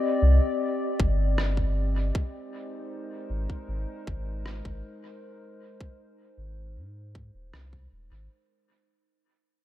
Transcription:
0.00 4.25 C4 medium
0.00 4.61 G4 medium
0.00 4.35 D5 medium
0.00 3.21 D#5 medium
0.22 0.39 C2 loud
1.00 2.11 G1 medium
1.00 kick medium
1.38 cross-stick medium
1.57 kick medium
2.15 8.31 G#3 medium
2.15 kick loud
2.29 8.30 C5 medium
2.41 8.30 D#4 medium
2.71 8.30 A#4 medium
3.30 3.47 G#1 loud
3.50 kick soft
3.68 3.86 G#1 medium
4.07 4.61 G#1 medium
4.07 kick medium
4.46 cross-stick medium
4.65 4.82 G#1 medium
4.65 kick medium
5.80 kick medium
6.37 6.78 G#1 medium
6.76 7.30 G#2 medium
7.15 kick medium
7.34 7.51 D#1 medium
7.53 7.87 C2 medium
7.53 cross-stick medium
7.73 kick medium
7.92 8.09 D#1 medium
8.11 8.28 G#1 medium

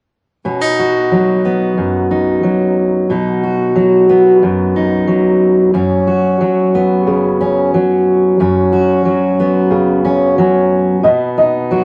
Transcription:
0.45 1.77 B2 soft
0.45 0.61 C#4 soft
0.61 2.10 D#4 soft
0.79 3.43 F#4 soft
1.12 2.43 F#3 soft
1.45 4.09 B3 soft
1.77 3.10 F#2 soft
2.11 3.06 D#4 soft
2.43 3.75 F#3 soft
3.10 4.42 B2 soft
3.10 4.75 D#4 soft
3.43 6.07 F#4 soft
3.75 5.07 F#3 soft
4.09 5.77 B3 soft
4.43 5.73 F#2 soft
4.76 5.71 D#4 soft
5.07 6.40 F#3 soft
5.74 8.39 F#2 soft
5.74 7.39 C#4 soft
6.07 8.71 F#4 soft
6.41 7.74 F#3 soft
6.75 8.43 B3 soft
7.07 7.73 C#3 soft
7.41 8.39 C#4 soft
7.74 9.05 F#3 soft
8.40 11.04 F#2 soft
8.40 10.03 C#4 soft
8.73 11.70 F#4 soft
9.05 10.37 F#3 soft
9.40 11.01 B3 soft
9.70 10.37 C#3 soft
10.05 11.04 C#4 soft
10.38 11.00 F#3 soft
11.03 11.84 B2 soft
11.03 11.84 B3 soft
11.03 11.35 D#5 soft
11.38 11.84 D#4 soft
11.38 11.84 D#5 medium
11.71 11.84 F#3 soft
11.71 11.84 F#4 soft

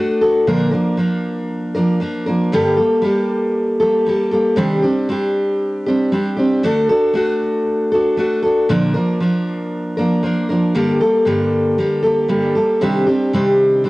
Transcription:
0.00 0.21 A3 medium
0.00 0.21 D4 medium
0.00 0.22 F#4 medium
0.00 0.20 A4 medium
0.21 0.47 D4 soft
0.21 0.47 F#4 medium
0.21 0.47 A4 medium
0.47 0.72 A#2 medium
0.47 0.72 D3 loud
0.47 0.73 F3 medium
0.47 0.72 A#3 loud
0.47 0.71 D4 loud
0.47 0.70 A#4 loud
0.71 0.96 F3 soft
0.71 0.97 A#3 medium
0.71 0.98 D4 medium
0.71 0.97 A#4 medium
0.97 1.75 F3 medium
0.97 1.76 A#3 medium
0.97 1.75 D4 medium
0.97 1.74 A#4 medium
1.75 1.99 F3 soft
1.75 2.00 A#3 medium
1.75 2.01 D4 medium
1.75 2.01 A#4 medium
2.00 2.26 F3 medium
2.00 2.27 A#3 medium
2.00 2.26 D4 medium
2.00 2.25 A#4 medium
2.26 2.53 F3 soft
2.26 2.53 A#3 medium
2.26 2.53 D4 soft
2.26 2.52 A#4 medium
2.52 2.78 G2 medium
2.52 2.78 D3 medium
2.52 2.79 G3 medium
2.52 2.78 A#3 medium
2.52 2.77 G4 medium
2.52 2.76 A4 loud
2.77 3.01 G3 soft
2.77 3.02 A#3 soft
2.77 3.03 G4 medium
2.77 3.03 A4 medium
3.02 3.82 G3 medium
3.02 3.81 A#3 medium
3.02 3.80 G4 medium
3.02 3.79 A4 medium
3.80 4.05 G3 soft
3.80 4.06 A#3 medium
3.80 4.07 G4 soft
3.80 4.06 A4 medium
4.06 4.32 G3 medium
4.06 4.32 A#3 medium
4.06 4.31 G4 medium
4.06 4.30 A4 medium
4.31 4.56 G3 soft
4.31 4.57 A#3 medium
4.31 4.57 G4 medium
4.31 4.58 A4 medium
4.56 4.83 C3 medium
4.56 4.83 D#3 medium
4.56 4.83 G3 medium
4.56 4.83 C4 medium
4.56 4.82 D4 medium
4.56 4.81 G4 loud
4.82 5.08 G3 medium
4.82 5.08 C4 medium
4.82 5.09 D4 medium
4.82 5.09 G4 medium
5.09 5.86 G3 medium
5.09 5.87 C4 medium
5.09 5.88 D4 medium
5.09 5.85 G4 medium
5.86 6.11 G3 medium
5.86 6.12 C4 soft
5.86 6.12 D4 medium
5.86 6.12 G4 medium
6.12 6.38 G3 medium
6.12 6.38 C4 medium
6.12 6.37 D4 medium
6.12 6.35 G4 medium
6.37 6.63 G3 soft
6.37 6.64 C4 medium
6.37 6.63 D4 medium
6.37 6.63 G4 medium
6.63 6.89 D3 medium
6.63 6.89 A3 medium
6.63 6.90 D4 medium
6.63 6.89 F#4 medium
6.63 6.88 A4 loud
6.89 7.14 D4 medium
6.89 7.14 F#4 medium
6.89 7.15 A4 medium
7.14 7.91 A3 medium
7.14 7.95 D4 medium
7.14 7.92 F#4 medium
7.14 7.91 A4 medium
7.92 8.17 D4 medium
7.92 8.18 F#4 medium
7.92 8.18 A4 medium
8.17 8.43 A3 medium
8.17 8.44 D4 medium
8.17 8.43 F#4 medium
8.17 8.41 A4 medium
8.42 8.69 D4 soft
8.42 8.70 F#4 medium
8.42 8.69 A4 medium
8.69 8.95 A#2 medium
8.69 8.95 D3 medium
8.69 8.95 F3 medium
8.69 8.95 A#3 medium
8.69 8.94 D4 loud
8.69 8.93 A#4 loud
8.94 9.19 F3 soft
8.94 9.21 A#3 medium
8.94 9.21 D4 medium
8.94 9.20 A#4 medium
9.20 9.98 F3 medium
9.20 9.99 A#3 medium
9.20 9.98 D4 medium
9.20 9.97 A#4 medium
9.97 10.21 F3 soft
9.97 10.22 A#3 soft
9.97 10.24 D4 medium
9.97 10.23 A#4 medium
10.23 10.49 F3 medium
10.23 10.49 A#3 medium
10.23 10.49 D4 medium
10.23 10.48 A#4 medium
10.49 10.75 F3 soft
10.49 10.74 A#3 soft
10.49 10.75 D4 medium
10.49 10.75 A#4 medium
10.74 11.00 G2 medium
10.74 11.01 D3 medium
10.74 11.01 G3 medium
10.74 11.01 A#3 medium
10.74 11.01 G4 medium
10.74 10.99 A4 medium
11.00 11.25 G3 soft
11.00 11.25 A#3 soft
11.00 11.26 G4 soft
11.00 11.26 A4 medium
11.25 11.77 G2 medium
11.25 12.29 D3 medium
11.25 11.78 G3 medium
11.25 11.77 A#3 medium
11.25 11.79 G4 medium
11.25 11.78 A4 medium
11.78 12.04 G3 medium
11.78 12.03 A#3 medium
11.78 12.02 G4 medium
11.78 12.01 A4 medium
12.03 12.28 G3 soft
12.03 12.29 A#3 soft
12.03 12.29 G4 medium
12.03 12.29 A4 medium
12.28 12.55 G2 medium
12.28 12.55 D3 medium
12.28 12.55 G3 medium
12.28 12.55 A#3 medium
12.28 12.55 G4 medium
12.28 12.54 A4 medium
12.55 12.81 G3 soft
12.55 12.82 A#3 soft
12.55 12.82 G4 soft
12.55 12.81 A4 medium
12.81 13.07 C3 medium
12.81 13.07 D#3 medium
12.81 13.07 G3 medium
12.81 13.08 C4 medium
12.81 13.06 D4 medium
12.81 13.05 G4 medium
13.07 13.33 G3 soft
13.07 13.33 C4 soft
13.07 13.33 D4 soft
13.07 13.33 G4 medium
13.33 13.85 C3 medium
13.33 13.85 D#3 medium
13.33 13.83 G3 medium
13.33 13.84 C4 medium
13.33 13.85 D4 medium
13.33 13.85 G4 medium
13.84 13.90 G3 medium
13.84 13.90 C4 medium
13.84 13.90 D4 medium
13.84 13.90 G4 medium

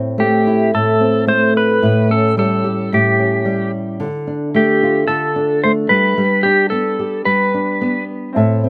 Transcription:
0.00 0.73 A2 medium
0.00 0.99 C4 soft
0.18 1.27 A3 medium
0.18 0.74 G4 medium
0.47 2.64 E4 soft
0.74 1.81 A2 medium
0.74 1.28 A4 medium
1.00 1.88 C4 soft
1.27 2.37 A3 medium
1.27 1.56 C5 medium
1.57 2.12 B4 medium
1.82 2.91 A2 medium
2.10 3.18 C#4 medium
2.10 2.38 A4 medium
2.37 3.44 G3 medium
2.37 2.94 A4 medium
2.64 4.06 G4 medium
2.93 4.06 A2 medium
2.93 3.70 G4 medium
3.19 4.06 C#4 medium
3.45 4.05 G3 medium
4.00 5.08 D3 medium
4.27 5.35 D4 medium
4.55 5.64 A3 medium
4.55 5.06 G4 medium
4.83 5.97 F4 medium
5.08 5.90 D3 medium
5.08 5.64 A4 medium
5.36 6.45 D4 medium
5.64 6.21 A3 medium
5.64 5.71 C5 medium
5.89 6.16 G3 medium
5.89 6.46 B4 medium
6.18 7.25 G3 medium
6.43 7.53 D4 medium
6.43 6.70 G4 medium
6.70 7.80 B3 medium
6.70 7.25 A4 medium
6.99 8.41 G4 medium
7.25 8.41 G3 medium
7.25 8.04 B4 medium
7.54 8.41 D4 medium
7.81 8.41 B3 medium
8.33 8.69 A2 medium
8.33 8.69 C4 medium
8.33 8.69 E4 medium
8.33 8.69 A4 medium
8.37 8.69 E5 medium
8.64 8.69 C4 soft

